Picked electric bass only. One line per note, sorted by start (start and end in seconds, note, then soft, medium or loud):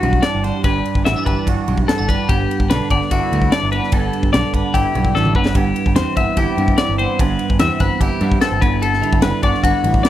0.03 0.19 B1 medium
0.35 0.50 G1 medium
0.64 0.80 G1 medium
0.95 1.03 G1 medium
1.07 1.14 A1 medium
1.26 1.34 G1 medium
1.47 1.55 G1 medium
1.68 1.84 B1 medium
2.00 2.15 G1 medium
2.29 2.45 G1 medium
2.59 2.68 G1 medium
2.71 2.79 B1 medium
2.91 2.99 G1 medium
3.11 3.19 G1 medium
3.32 3.48 D2 medium
3.63 3.79 G1 medium
3.92 4.09 G1 medium
4.23 4.32 G1 medium
4.35 4.42 B1 medium
4.53 4.62 G1 medium
4.75 4.83 G1 medium
4.95 5.14 B1 medium
5.15 5.34 A1 medium
5.35 5.54 G1 medium
5.55 5.71 G1 medium
5.86 5.95 G1 medium
5.96 6.04 E2 medium
6.17 6.25 G1 medium
6.37 6.46 G1 medium
6.58 6.74 G2 medium
6.89 7.05 G1 medium
7.20 7.36 G1 medium
7.50 7.58 G1 medium
7.60 7.68 E2 medium
7.80 7.88 G1 medium
8.00 8.09 G1 medium
8.21 8.37 G2 medium
8.52 8.60 G1 medium
8.63 9.02 G1 medium
9.13 9.21 G1 medium
9.23 9.31 F#1 medium
9.44 9.51 G1 medium
9.63 9.71 G1 medium
9.84 10.00 A1 medium